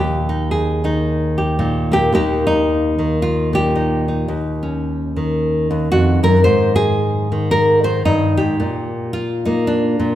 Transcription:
Already playing: D#2
0.00 G4
0.29 D#4
0.51 G#4
0.84 D#3 D#4
1.38 G4
1.59 A#2 D#4
1.92 A#3 G4
2.12 D#2 D#3 A#3 D#4 G4
2.47 D#4
2.98 D#3
3.22 F4
3.53 A#2 G4
3.76 D#4
4.08 D#4
4.28 D#2
4.63 C#4
5.16 D#3
5.71 D#2
5.92 F2 F#4
6.23 F#2 A#4
6.44 G#2 C5
6.76 G#4
7.32 D#3
7.51 A#4
7.84 D#3 C5
8.05 G2 D#4
8.37 G#2 G4
8.60 A#2
9.13 F4
9.45 A#3 D#4
9.67 D4
9.99 A#2

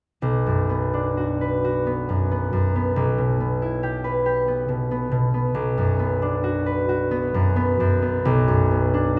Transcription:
0.22 B1
0.46 F#2
0.69 B3
0.94 D4
1.17 F#4
1.41 B4
1.64 F#4
1.87 B3
2.09 F#2
2.31 B3
2.53 F#2
2.76 B3
2.96 B1
3.18 B2
3.40 B3
3.62 E4
3.83 G4
4.04 B4
4.26 G4
4.48 B3
4.68 B2
4.91 B3
5.11 B2
5.34 B3
5.55 B1
5.78 F#2
5.99 B3
6.22 D4
6.44 F#4
6.66 B4
6.89 F#4
7.11 B3
7.34 F#2
7.56 B3
7.80 F#2
8.02 B3
8.25 B1
8.48 F#2
8.71 B3
8.94 D4

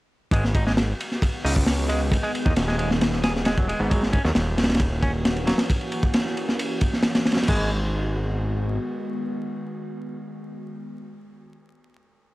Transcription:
0.31 G#1 D#3 G#3 B3 F#4, kick, ride
0.44 snare
0.55 D#4, kick, ride
0.67 G#3, snare
0.77 snare, ride
1.00 ride
1.12 snare
1.22 kick, ride
1.44 C#2 D#4, open hi-hat
1.56 kick
1.66 snare, ride
1.79 ride
1.89 G#3, ride
2.11 G#4, kick, ride
2.23 G#3, ride
2.35 ride
2.46 D#2 D#4, kick
2.56 D#1, snare, ride
2.68 G#3, snare
2.78 G#3, ride
2.91 snare
3.01 snare, ride
3.13 snare
3.23 G#4, snare, ride
3.36 snare
3.45 G#3, snare, ride
3.58 F#3, kick
3.68 G#3, ride
3.80 G#1 B3
3.90 E3 F#3 A#3 C#4 F#4, kick, ride
4.03 snare
4.13 C#4, kick, ride
4.24 D#2 F#3, snare
4.35 D#1, snare, ride
4.58 snare, ride
4.64 snare, ride
4.69 snare, ride
4.75 snare, ride
4.80 kick, ride
5.02 C#4, kick, ride
5.25 snare, ride
5.36 ride
5.47 F#3, snare, ride
5.58 snare, ride
5.70 kick, ride
5.81 ride
5.92 ride
6.03 kick
6.14 snare, ride
6.26 snare
6.37 ride
6.49 snare
6.59 ride
6.81 kick, ride
6.93 snare
7.03 snare, ride
7.15 snare, ride
7.25 snare, ride
7.32 snare, ride
7.37 snare, ride
7.43 snare, ride
7.48 G#1 D#3 G#3 B3 F#4, kick, crash

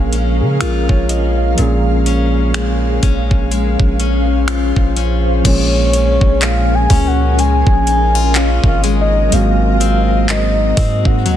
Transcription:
Already playing: A#1 A#2 F3 G#3 A#3 C#4 G#4 A#4 F5
0.13 C#4, closed hi-hat
0.41 C#3 G#4
0.61 A#1 F4 A#4, finger snap, closed hi-hat
0.89 A#1 C#5, kick
1.09 C#4 D#5, closed hi-hat
1.38 F5
1.55 A#2 F3 G#3 A#3 C#4 G#4, closed hi-hat
1.59 A#1 C#4 G#4
2.06 C#4, closed hi-hat
2.54 G#3, finger snap, closed hi-hat
3.03 A#1 C#4, kick, closed hi-hat
3.31 kick
3.51 G#3 C5, closed hi-hat
3.80 A#1, kick
4.00 C#4, closed hi-hat
4.48 F4, finger snap, closed hi-hat
4.76 A#1, kick
4.96 C#4, closed hi-hat
5.42 A#1 A#2 F3 G#3 A#3 C#4 G#4 A#4 C#5 G#5, kick, closed hi-hat, crash
5.47 C#4 G#4
5.93 C#4, closed hi-hat
6.21 A#1, kick
6.42 F5, clap, closed hi-hat
6.75 G#5
6.90 C#2 C#4, kick, open hi-hat
7.07 F#5
7.38 G#3 D#5 G#5, closed hi-hat
7.67 A#1, kick
7.87 D#4, closed hi-hat
8.15 F4
8.35 C#4 F5, clap, closed hi-hat
8.64 G#1, kick
8.68 F5
8.84 G#3, closed hi-hat
9.01 D#5
9.29 G#1 G#2 F#3 G#3 A#3 C4 F#4 D#5, closed hi-hat
9.33 C4 F#4 F5
9.80 C4, closed hi-hat
10.29 D#5, clap, closed hi-hat
10.77 G#2 C4, kick, open hi-hat
11.05 F#5, kick
11.26 D#2 F#3, closed hi-hat

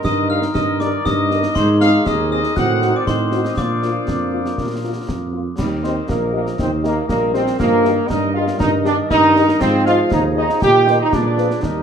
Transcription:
Already playing: D#3 D#4 A#4 D#5
0.03 G2 D#5 D#6, concert bass drum, snare
0.29 G3 D#4 A#4 F5 F6
0.42 snare
0.54 G2 D#5 D#6, concert bass drum, snare
0.80 G3 D#4 A#4 D5 D6, snare
1.04 G2 D#4 D#5 D#6, concert bass drum, snare
1.31 G3 D#4 A#4, snare
1.43 snare
1.55 G#2 D#3 D#4 G#4 C5 D#5 C6, concert bass drum, snare, crash
1.80 C4 D#4 G#4 F5 F6, snare
2.06 D#2 D#3 D#4 G#4 D#5 D#6, concert bass drum, snare
2.31 C4 D#4 G#4 D#5 D#6
2.44 snare
2.56 A2 D#3 C4 F#4 C5 F#5 F#6, concert bass drum, snare
2.81 C4 D#4 F#4, snare
2.96 D5 D6
3.06 A2 D#3 C4 D#4 C5 C6, concert bass drum, snare
3.32 C4 D#4 F#4, snare
3.44 D#5 D#6, snare
3.57 A#2 F3 A#3 D4 D5 F5 D6, concert bass drum, snare
3.83 A#3 F4, snare
4.07 F2, concert bass drum, snare
4.33 A#3 F4
4.46 snare
4.58 A#2 A#4, concert bass drum, snare
4.83 A#3 F4
5.08 F2, concert bass drum, snare
5.33 A#3 F4
5.58 D#2 G3 G4 A#4 D#5, concert bass drum, snare, crash
5.83 C4 G4 C5 D#5, snare
6.08 A#1 F3 A#3 A#4 D#5, concert bass drum, snare
6.33 A#3 G4 A#4 D#5
6.47 snare
6.59 D#2 D#3 C4 C5, concert bass drum, snare
6.84 A#3 G4 A#4 D#5, snare
7.08 A#1 G3 A#3 A#4 D#5, concert bass drum, snare
7.34 C4 G4 C5 D#5, snare
7.47 snare
7.59 G2 F3 A#3 A#4 D#5, concert bass drum, snare
7.85 D#3 G4 D#5, snare
8.08 G2 G3 D#4 A#4 D#5, concert bass drum, snare
8.33 F4 G4 D#5 F5
8.48 snare
8.59 G2 D#3 D#4 A#4 D#5, concert bass drum, snare
8.85 D4 G4 D5 D#5, snare
9.10 G2 D#4 A#4 D#5, concert bass drum, snare
9.35 G4 D#5, snare
9.49 snare
9.60 G#2 F3 C4 G#4 C5 D#5, concert bass drum, snare, crash
9.85 F4 G#4 C5 D#5 F5, snare
10.11 D#2 D#4 G#4 D#5, concert bass drum, snare
10.36 D#4 G#4 C5 D#5
10.50 snare
10.60 A#2 D#3 G4 D#5 G5, concert bass drum, snare
10.85 G4 A#4 C5 D#5, snare
10.99 D#4 D#5
11.12 A#2 G3 D4 G#4 B4 D5, concert bass drum, snare
11.37 F3 F4 G#4 B4, snare
11.51 snare
11.62 D#2 G3 D#4 G4 A#4 D#5, concert bass drum, snare

